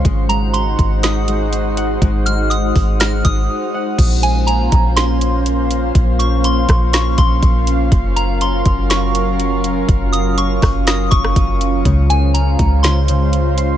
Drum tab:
CC |----------------|----------------|x---------------|----------------|
HH |x-x-x-x-x-x-x-x-|x-x-x-o-x-x-----|x-x-x-x-x-x-x-x-|x-x-x-x-x-x-x-x-|
SD |--------o-------|--------o-------|--------o-------|------r-o-------|
BD |o-----o---------|o-----o---o-----|o-----o---------|o-----o---o-o---|

CC |----------------|----------------|----------------|
HH |x-x-x-x-x-x-x-x-|x-x-x-o-x-x-x-x-|x-x-x-x-x-x-x-x-|
SD |--------o-------|------r-o--r----|--------o-------|
BD |o-----o---------|o-----o---o-o---|o-----o---------|